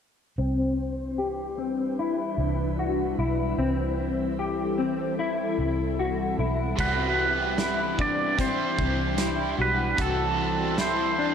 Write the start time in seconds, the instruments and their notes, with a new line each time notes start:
0.37 fingered electric bass C2, ambient pad E3 G3 D4 E4 B4, clean electric guitar C4
1.18 clean electric guitar G4
1.58 clean electric guitar C4
1.99 clean electric guitar E4
2.38 fingered electric bass C2
2.79 clean electric guitar F#4
3.18 fingered electric bass B1, clean electric guitar E4
3.57 fingered electric bass C2, ambient pad G3 C4 A4, clean electric guitar C4
4.39 clean electric guitar G4
4.78 clean electric guitar C4
5.19 clean electric guitar E4
5.59 fingered electric bass C2
5.99 clean electric guitar F#4
6.39 fingered electric bass B1, clean electric guitar E4
6.76 fingered electric bass C2, overdriven electric guitar C3 G3, ambient pad E3 G3 D4 E4, clean electric guitar F#4, kick, crash
6.80 overdriven electric guitar B3 E4 G4, pedal steel guitar B4
7.58 clean electric guitar E4, snare, closed hi-hat
7.99 clean electric guitar D4, pedal steel guitar D5, kick
8.38 overdriven electric guitar G3, clean electric guitar C4, pedal steel guitar C5, kick, closed hi-hat
8.42 overdriven electric guitar E4 G4
8.78 fingered electric bass C2, kick
9.18 clean electric guitar E4, snare, closed hi-hat
9.58 fingered electric bass B1, clean electric guitar F#4, pedal steel guitar B4
9.96 fingered electric bass C2, overdriven electric guitar C3 G3 C4 D4 A4, ambient pad G3 C4 A4, clean electric guitar F#4, kick, closed hi-hat
10.02 pedal steel guitar A4
10.77 overdriven electric guitar G3 C4, clean electric guitar E4, snare, closed hi-hat
10.81 overdriven electric guitar D4 A4, pedal steel guitar C5
11.18 clean electric guitar D4